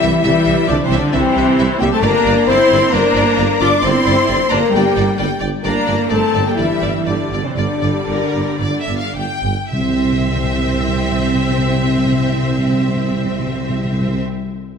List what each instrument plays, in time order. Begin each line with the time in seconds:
Already playing: cello section E3, viola section G3, french horn section E4, violin section E5
0.01 double bass section C2, tuba C2, violin section E5
0.22 tuba C2, double bass section C2, cello section E3, viola section G3, french horn section E4, violin section E5
0.45 double bass section C2, tuba C2, violin section E5
0.67 tuba C2, double bass section C2, cello section D3, viola section F3, french horn section D4, violin section D5 E5
0.82 cello section C3, viola section E3, french horn section C4, violin section C5
0.90 tuba C2, double bass section C2, violin section E5
0.96 cello section D3, viola section F3, french horn section D4, violin section D5
1.11 tuba C2, double bass section C2, cello section C3, viola section E3, french horn section C4, violin section C5 E5
1.35 tuba C2, double bass section C2, violin section E5
1.58 double bass section C2, tuba C2, violin section E5
1.79 double bass section C2, tuba C2, cello section G3, viola section A#3, french horn section G4, violin section E5 G5
1.92 cello section A3, viola section C4, french horn section A4, violin section A5
2.02 double bass section G1, tuba G1, cello section A#3, viola section D4, french horn section A#4, violin section D5 A#5
2.26 double bass section G1, tuba G1, violin section D5
2.47 tuba G1, double bass section G1, cello section C4, viola section E4, french horn section C5, violin section D5 C6
2.71 tuba G1, double bass section G1, violin section D5
2.92 double bass section G1, tuba G1, cello section A#3, viola section D4, french horn section A#4, violin section D5 A#5
3.16 tuba G1, double bass section G1, violin section D5
3.38 tuba G1, double bass section G1, violin section D5
3.60 double bass section G1, tuba G1, cello section D4, viola section F4, french horn section D5, violin section D5 D6
3.82 double bass section G1, tuba G1, cello section C4, viola section E4, french horn section C5, violin section D5 C6
4.06 double bass section G1, tuba G1, violin section D5
4.29 tuba G1, double bass section G1, violin section D5
4.50 tuba G1, double bass section G1, cello section A#3, viola section D4, french horn section A#4, violin section D5 A#5
4.73 double bass section G1, tuba G1, cello section G3, viola section A#3, french horn section G4, violin section D5 G5
4.96 double bass section G1, tuba G1, violin section D5
5.17 tuba G1, double bass section G1, cello section G3, viola section A#3, french horn section G4, violin section D5 G5
5.40 tuba G1, double bass section G1, violin section D5
5.63 tuba G1, double bass section G1, cello section A#3, viola section D4, french horn section A#4, violin section D5 A#5
5.86 tuba G1, double bass section G1, violin section D5
6.10 tuba G1, double bass section G1, cello section A3, viola section C4, french horn section A4, violin section D5 A5
6.34 tuba G1, double bass section G1, violin section D5
6.45 cello section G3, viola section A#3, french horn section G4, violin section G5
6.55 tuba G1, double bass section G1, cello section E3, viola section G3, french horn section E4, violin section D5 E5
6.82 tuba G1, double bass section G1, violin section D5
7.06 tuba G1, double bass section G1, cello section D3, viola section G3, french horn section D4, violin section D5
7.31 tuba G1, double bass section G1, violin section D5
7.43 cello section C3, viola section E3, french horn section C4, violin section C5
7.56 tuba G1, double bass section G1, cello section D3, viola section G3, french horn section D4, violin section D5
7.82 double bass section G1, tuba G1, violin section D5
8.08 double bass section G1, tuba G1, violin section A#4
8.35 double bass section G1, tuba G1
8.60 double bass section G1, tuba G1, violin section D5
8.82 violin section E5
8.88 double bass section G1, tuba G1
8.98 violin section F5
9.15 double bass section G1, tuba G1, violin section G5
9.43 double bass section G1, tuba G1
9.72 double bass section C2, tuba C2, timpani C3, french horn section C4, viola section C4, cello section C4, violin section C5 E5
9.81 timpani C3
9.89 timpani C3
9.97 timpani C3
10.04 timpani C3
10.12 timpani C3
10.21 timpani C3
10.28 timpani C3
10.36 timpani C3
10.44 timpani C3
10.51 timpani C3
10.58 timpani C3
10.66 timpani C3
10.73 timpani C3
10.80 timpani C3
10.88 timpani C3
10.96 timpani C3
11.04 timpani C3
11.12 timpani C3
11.19 timpani C3
11.27 timpani C3
11.35 timpani C3
11.42 timpani C3
11.50 timpani C3
11.58 timpani C3
11.66 timpani C3
11.74 timpani C3
11.82 timpani C3
11.89 timpani C3
11.97 timpani C3
12.04 timpani C3
12.12 timpani C3
12.20 timpani C3
12.27 timpani C3
12.35 timpani C3
12.43 timpani C3
12.51 timpani C3
12.58 timpani C3
12.66 timpani C3
12.73 timpani C3
12.80 timpani C3
12.88 timpani C3
12.96 timpani C3
13.03 timpani C3
13.11 timpani C3
13.17 timpani C3
13.25 timpani C3
13.32 timpani C3
13.39 timpani C3
13.47 timpani C3
13.54 timpani C3
13.62 timpani C3
13.69 timpani C3
13.78 timpani C3
13.85 timpani C3
13.92 timpani C3
14.00 timpani C3
14.07 timpani C3
14.16 timpani C3